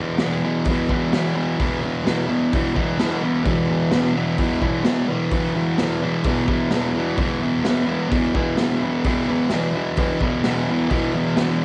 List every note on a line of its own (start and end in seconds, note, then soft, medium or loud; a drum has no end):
0.00 0.21 E2 medium
0.00 0.21 B2 medium
0.00 0.24 E3 medium
0.18 0.47 E2 medium
0.18 0.44 B2 medium
0.18 snare loud
0.18 open hi-hat medium
0.24 0.43 E3 medium
0.43 0.67 E2 medium
0.43 0.68 B2 medium
0.43 0.70 E3 medium
0.65 0.92 E2 medium
0.65 kick loud
0.65 open hi-hat medium
0.69 0.91 B2 medium
0.69 0.89 E3 medium
0.89 1.13 E2 medium
0.89 1.13 B2 medium
0.89 1.16 E3 loud
0.89 kick medium
1.13 1.58 E2 medium
1.13 1.37 B2 medium
1.13 1.35 E3 medium
1.13 snare loud
1.13 open hi-hat medium
1.35 1.59 B2 medium
1.35 1.61 E3 medium
1.58 2.04 E2 medium
1.58 1.84 B2 medium
1.58 1.81 E3 loud
1.58 kick loud
1.58 open hi-hat medium
1.81 2.06 B2 medium
1.81 2.07 E3 medium
2.05 2.30 E2 medium
2.05 2.28 B2 medium
2.05 2.27 E3 medium
2.05 snare loud
2.05 open hi-hat medium
2.27 2.53 E2 medium
2.27 2.53 B2 medium
2.27 2.56 E3 medium
2.53 2.77 E2 medium
2.53 2.74 B2 medium
2.53 2.75 E3 medium
2.53 kick loud
2.53 open hi-hat medium
2.75 2.98 E2 medium
2.75 2.99 B2 medium
2.75 3.00 E3 medium
2.75 kick medium
2.99 3.44 E2 medium
2.99 3.24 B2 medium
2.99 3.23 E3 medium
2.99 snare loud
2.99 open hi-hat medium
3.23 3.45 B2 medium
3.23 3.47 E3 medium
3.44 3.92 E2 medium
3.44 3.70 B2 medium
3.44 3.67 E3 medium
3.44 kick loud
3.44 open hi-hat medium
3.67 3.92 B2 medium
3.67 3.95 E3 medium
3.91 4.17 E2 medium
3.91 4.16 B2 medium
3.91 snare loud
3.91 open hi-hat medium
3.96 4.15 E3 medium
4.15 4.38 E2 medium
4.15 4.39 B2 medium
4.15 4.41 E3 medium
4.38 4.64 E2 medium
4.38 4.62 B2 medium
4.38 4.61 E3 medium
4.38 kick loud
4.38 open hi-hat medium
4.61 4.84 E2 medium
4.61 4.84 B2 medium
4.61 4.86 E3 medium
4.61 kick medium
4.84 5.32 E2 medium
4.84 5.10 B2 medium
4.84 5.08 E3 medium
4.84 snare loud
4.84 open hi-hat medium
5.08 5.32 B2 medium
5.08 5.34 E3 medium
5.31 5.79 E2 medium
5.31 5.56 B2 medium
5.31 5.55 E3 medium
5.31 kick loud
5.31 open hi-hat medium
5.55 5.79 B2 medium
5.55 5.82 E3 medium
5.78 6.04 E2 medium
5.78 6.02 B2 medium
5.78 snare loud
5.78 open hi-hat medium
5.82 6.02 E3 medium
6.02 6.25 E2 medium
6.02 6.26 B2 medium
6.02 6.27 E3 medium
6.24 6.49 E2 medium
6.24 6.48 B2 medium
6.24 6.47 E3 medium
6.24 kick loud
6.24 open hi-hat medium
6.47 6.71 E2 medium
6.47 6.72 B2 medium
6.47 6.73 E3 medium
6.47 kick medium
6.71 7.17 E2 medium
6.71 6.97 B2 medium
6.71 6.93 E3 medium
6.71 snare loud
6.71 open hi-hat medium
6.94 7.18 B2 medium
6.94 7.21 E3 medium
7.17 7.63 E2 medium
7.17 7.44 B2 medium
7.17 7.42 E3 medium
7.17 kick loud
7.17 open hi-hat medium
7.42 7.64 B2 medium
7.42 7.66 E3 medium
7.63 7.88 E2 medium
7.63 7.86 B2 medium
7.63 7.85 E3 medium
7.63 snare loud
7.63 open hi-hat medium
7.86 8.08 E2 medium
7.86 8.10 B2 medium
7.86 8.12 E3 medium
8.09 8.36 E2 medium
8.09 8.34 B2 medium
8.09 8.34 E3 medium
8.09 kick loud
8.09 open hi-hat medium
8.34 8.57 E2 medium
8.34 8.57 B2 medium
8.34 8.59 E3 medium
8.34 kick medium
8.57 9.04 E2 medium
8.57 8.83 B2 medium
8.57 8.81 E3 medium
8.57 snare loud
8.57 open hi-hat medium
8.81 9.05 B2 medium
8.81 9.07 E3 medium
9.04 9.52 E2 medium
9.04 9.29 B2 medium
9.04 9.28 E3 medium
9.04 kick loud
9.04 open hi-hat medium
9.28 9.52 B2 medium
9.28 9.54 E3 medium
9.50 9.77 E2 medium
9.50 9.75 B2 medium
9.50 snare loud
9.50 open hi-hat medium
9.54 9.75 E3 medium
9.75 9.97 E2 medium
9.75 9.98 B2 medium
9.75 10.00 E3 loud
9.96 10.24 E2 medium
9.96 10.22 B2 medium
9.96 10.21 E3 medium
9.96 kick loud
9.96 open hi-hat medium
10.21 10.44 B2 medium
10.21 10.46 E3 medium
10.21 kick medium
10.25 10.43 E2 medium
10.43 10.90 E2 medium
10.43 10.70 B2 medium
10.43 10.69 E3 medium
10.43 snare loud
10.43 open hi-hat medium
10.69 10.91 B2 medium
10.69 10.93 E3 medium
10.90 11.37 E2 medium
10.90 11.16 B2 medium
10.90 11.15 E3 medium
10.90 kick loud
10.90 open hi-hat medium
11.15 11.39 B2 medium
11.15 11.41 E3 medium
11.37 11.65 E2 medium
11.37 11.63 B2 medium
11.37 snare loud
11.37 open hi-hat medium
11.41 11.63 E3 medium